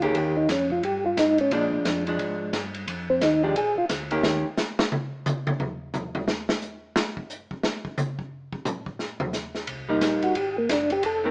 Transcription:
Already playing: D2
0.02 D#3 A#3 C#4 G4 G#4, ride
0.15 D#2 G4, kick, ride
0.37 D#4
0.49 F2 C#4, kick, snare, hi-hat pedal, ride
0.70 F4, kick
0.83 G2 G4, kick, ride
1.06 F4
1.17 G#2 D#4, kick, snare, hi-hat pedal, ride
1.38 C#4, ride
1.51 A#2 F3 G#3 D4, kick, ride
1.72 A#2
1.85 F2, kick, snare, hi-hat pedal, ride
2.07 F3 G#3 D4, ride
2.19 G#2, kick, ride
2.53 G2, kick, snare, hi-hat pedal, ride
2.74 ride
2.87 F2, kick, ride
3.10 C4
3.21 D#2 D#4, kick, snare, hi-hat pedal, ride
3.43 F3 G#3 D4 G4
3.56 A#1 G#4, kick, ride
3.76 A#1 F4
3.89 D2, kick, snare, hi-hat pedal, ride
4.11 D#3 A#3 C#4 G4, ride
4.23 D#2, snare
4.57 snare, hi-hat pedal
4.79 snare
4.92 high tom
5.26 hi-hat pedal, high tom
5.47 high tom
5.60 floor tom
5.94 floor tom, hi-hat pedal
6.15 floor tom
6.28 snare
6.49 snare
6.62 hi-hat pedal
6.96 snare
7.17 kick
7.30 hi-hat pedal
7.51 kick
7.63 snare
7.85 kick
7.98 hi-hat pedal, high tom
8.19 kick
8.53 kick
8.65 hi-hat pedal, mid tom
8.86 kick
8.99 snare
9.20 floor tom
9.33 snare, hi-hat pedal
9.55 snare
9.67 C2, kick, ride
9.89 G3 A#3 D#4
10.01 A#1, kick, snare, hi-hat pedal, ride
10.22 A#1 F#4, ride
10.35 G#1 G4, kick, ride
10.58 A#3
10.69 F#1 D4, kick, snare, hi-hat pedal, ride
10.90 G4, ride
11.03 F1 A4, kick, ride
11.24 D#3 A3 C4 A#4

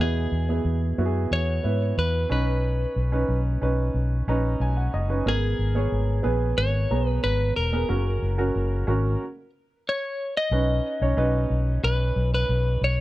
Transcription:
0.00 E2 B2 B3 E4 G#4
0.32 E2
0.49 B3 E4 G#4
0.65 E2
0.98 F#2 B3 E4 F#4
1.06 G#4
1.31 E2 C#5
1.64 G#2 B3 E4 B4
1.97 E2 B4
2.30 B1 C#4 D#4 B4
2.96 B1
3.12 C#4 D#4 B4
3.29 B1
3.62 B1 C#4 D#4 B4
3.94 B1
4.27 A#1 C#4 D#4 B4 A#5
4.60 B1 G#5
4.77 F#5
4.94 F#1 D#5
5.09 C#4 D#4 B4
5.26 G#1 B3 G#4 A#4
5.59 G#1
5.75 B3 G#4 C#5
5.92 G#1
6.23 A#1 B3 G#4 B4
6.58 G#1 C#5
6.91 B1 B3 G#4 A#5
7.09 B4
7.24 G#1 B4
7.56 E1 A#4
7.73 B3 G#4 A#4
7.89 F#1 C#3 C#4 F#4 A#4
8.22 F#1
8.38 C#4 F#4 A#4
8.55 F#1
8.87 G#1 C#4 F#4 A#4
9.89 C#5
10.37 D#5
10.51 B1 C#4 D#4 B4
11.01 B1 C#4 D#4 C#5
11.17 B1 C#4 D#4 B4
11.50 B1
11.83 B1 B4
12.16 B1
12.34 B4
12.49 B1
12.81 B1 C#5

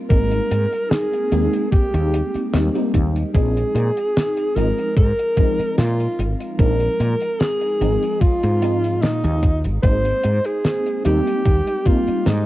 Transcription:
Already playing: G3 A#3 C4 D#4
0.09 G#1 G#3 A#3 C4 D#4 A#4, kick, closed hi-hat, tambourine
0.32 closed hi-hat, tambourine
0.51 G#2, closed hi-hat
0.73 closed hi-hat, tambourine
0.90 G#4, snare, closed hi-hat, tambourine
1.13 closed hi-hat, tambourine
1.31 D#2 G#3 A#3 C4 D#4, closed hi-hat
1.53 closed hi-hat, tambourine
1.71 G4, kick, closed hi-hat, tambourine
1.94 D#2, closed hi-hat, tambourine
2.14 closed hi-hat
2.34 muted fretless electric bass stroke, closed hi-hat, tambourine
2.53 D#2 G3 A#3 C4 D#4, snare, closed hi-hat, tambourine
2.74 G3 A#3 C4 D#4, closed hi-hat, tambourine
2.94 D#2, kick, closed hi-hat
3.16 closed hi-hat, tambourine
3.33 A#1 F3 G#3 C4 D#4 G#4, kick, closed hi-hat, tambourine
3.56 closed hi-hat, tambourine
3.75 A#2, closed hi-hat
3.97 closed hi-hat, tambourine
4.16 snare, closed hi-hat, tambourine
4.37 closed hi-hat, tambourine
4.55 G#1 F3 G#3 C4 D#4 A#4, closed hi-hat
4.78 closed hi-hat, tambourine
4.97 G#2 A#4, kick, closed hi-hat, tambourine
5.18 closed hi-hat, tambourine
5.36 F3 G#3 C4 D#4, kick, closed hi-hat
5.59 muted fretless electric bass stroke, closed hi-hat, tambourine
5.78 A#2 F4, snare, closed hi-hat, tambourine
6.00 closed hi-hat, tambourine
6.19 G#1, closed hi-hat
6.40 closed hi-hat, tambourine
6.58 A#1 F3 G#3 C4 D#4 A#4, kick, closed hi-hat, tambourine
6.80 closed hi-hat, tambourine
7.00 A#2, closed hi-hat
7.21 closed hi-hat, tambourine
7.40 G#4, snare, closed hi-hat, tambourine
7.61 closed hi-hat, tambourine
7.80 G#1 F3 G#3 C4 D#4, closed hi-hat
8.03 closed hi-hat, tambourine
8.21 F4, kick, closed hi-hat, tambourine
8.43 G#2, closed hi-hat, tambourine
8.61 F3 G#3 C4 D#4, closed hi-hat
8.84 closed hi-hat, tambourine
9.02 A#2 D#4, snare, closed hi-hat, tambourine
9.23 D#2, closed hi-hat, tambourine
9.43 kick, closed hi-hat
9.64 G#1, closed hi-hat, tambourine
9.82 G#1 G#3 A#3 C4 D#4 C5, kick, closed hi-hat, tambourine
10.05 closed hi-hat, tambourine
10.23 G#2, closed hi-hat
10.45 G#4, closed hi-hat, tambourine
10.64 snare, closed hi-hat, tambourine
10.86 closed hi-hat, tambourine
11.04 D#2 G3 A#3 C4 D#4 G4, closed hi-hat
11.27 closed hi-hat, tambourine
11.45 D#2, kick, closed hi-hat, tambourine
11.67 closed hi-hat, tambourine
11.85 G3 A#3 C4 D#4 F4, kick, closed hi-hat
12.07 muted fretless electric bass stroke, closed hi-hat, tambourine
12.26 G#2 D#4, snare, closed hi-hat, tambourine

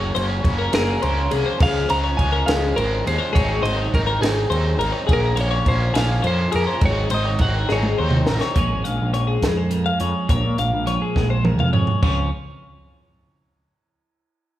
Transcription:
Already playing: F#1 F#2 C#3 F#3 A#3 C#4 G#4 C#5
0.14 F#1 F#3 A#3 C#4 C5, ride
0.29 C#5
0.42 F#1 C#3 F#3 A#3 C#4, kick, ride
0.59 A#4
0.72 F#1 F#3 A#3 C#4 G#4 A#4, snare, ride
1.01 C#2 C#3 F#3 A#3 C#4 C5, ride
1.29 C2 F#3 A#3 C#4 G#4, ride
1.46 C5
1.58 C#2 C#3 F3 G#3 C#4 G#4, kick, crash
1.63 F5
1.88 C#2 F3 G#3 C#4 C5 A#5, ride
2.04 C#5
2.17 C#2 C#3 F3 G#3 C#4 G#5, kick, ride
2.32 A#4
2.46 C#2 F3 G#3 C#4 G#4 F5, snare, ride
2.76 G#1 C#3 F3 G#3 C#4 A#4 C5, ride
3.04 D#2 G#3 C#4 G#4 C5, ride
3.08 F3
3.18 C5
3.33 G#1 G#2 D#3 F#3 C4 D#4 G#4 C#5, kick, ride
3.62 G#1 C4 D#4 C5 D#5, ride
3.67 F#3
3.77 C#5
3.94 G#1 D#3 F#3 C4 D#4 A#4, kick, ride
4.07 A#4
4.21 G#1 F#3 C4 D#4 G#4, snare, ride
4.50 D#2 D#3 F#3 C4 D#4 C5, ride
4.79 G#1 C4 D#4 A#4, ride
4.83 F#3
4.92 C#5
5.07 A#1 A#2 F3 A#3 C#4 G#4, kick, ride
5.13 A#4
5.35 A#1 A#3 C#4 C5, ride
5.40 F3 C#5
5.51 C#5
5.66 A#1 A#2 F3 A#3 C#4 C5, kick, ride
5.81 A#4
5.94 A#1 F3 A#3 C#4 G#4 F5, snare, ride
6.22 F2 A#2 F3 A#3 C#4 C5, ride
6.27 C5
6.52 F2 A#3 C#4 G#4 A#4, ride
6.56 F3
6.67 C5
6.81 G#1 G#2 D#3 F#3 C4 D#4 G#4, kick, ride
6.86 C#5
7.10 G#1 F#3 C4 D#4 C5, ride
7.14 D#5
7.26 C#5
7.39 G#1 D#3 F#3 C4 D#4 F#5, kick, ride
7.54 A#4
7.69 G#1 F#3 C4 D#4 G#4 C#5, snare
7.83 high tom
7.98 D#2 D#3 F#3 C4 D#4 C5
8.11 mid tom
8.26 A1 F#3 C4 D#4 A#4, snare
8.41 C#5, snare
8.55 A#1 A#2 F3 G#3 C#4 C#5, kick, closed hi-hat
8.59 G#4
8.72 G#1
8.84 A#1 F5, closed hi-hat
9.02 A#1
9.14 F3 C#5, closed hi-hat
9.27 G#4
9.42 F2 G#3, kick, snare, closed hi-hat
9.57 C5
9.70 F2 A#4, closed hi-hat
9.86 F5
10.00 F2 G#4 C#5, closed hi-hat
10.29 A#1 A#2 C#5, kick, closed hi-hat
10.44 A#2
10.58 A#1 F5, closed hi-hat
10.73 A#1
10.86 F3 C#5, closed hi-hat
11.02 G#4
11.16 A#1 G#3, kick, snare
11.30 C5
11.43 F2 A#4, mid tom
11.59 F2 F5, mid tom
11.73 G#4 C#5, floor tom
11.87 floor tom
12.02 C#2 C#3 F3 C4 C#4 F4 C#5, kick, crash

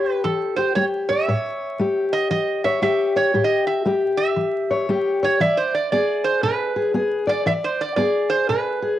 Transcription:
Already playing: A3 G4 C#5
0.24 E3 A4
0.56 G4 C5
0.75 A3 G4 C#5
1.09 C#5 E5
1.28 A2 C#5
1.80 A3 G4
2.13 D#5
2.30 E3 D#5
2.64 C#5 E5
2.82 A3 G4 E5
3.16 C#5
3.34 A2 G4
3.44 D#5
3.67 E5
3.85 A3 G4
4.17 E5
4.36 E3
4.70 C#5
4.89 A3 G4
5.23 C#5
5.40 E3 D5 E5
5.57 C5
5.74 D5
5.92 B3 G#4 D5
6.24 C5
6.43 B2 B4
6.76 G#4
6.94 B3 G#4
7.27 D5
7.46 E3 D5 E5
7.64 C5
7.81 D5
7.96 B3 G#4 D5
8.30 C5
8.49 B2 B4
8.82 G#4

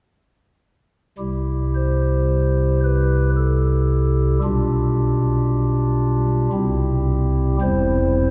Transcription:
1.18 C2 C3 G3 E4 G4
1.75 C5
2.84 B4
3.37 A4
4.43 B1 B2 G3 D4 F4 G4
6.53 C2 C3 G3 C4 E4
7.61 E1 E2 G3 C4 E4 C5

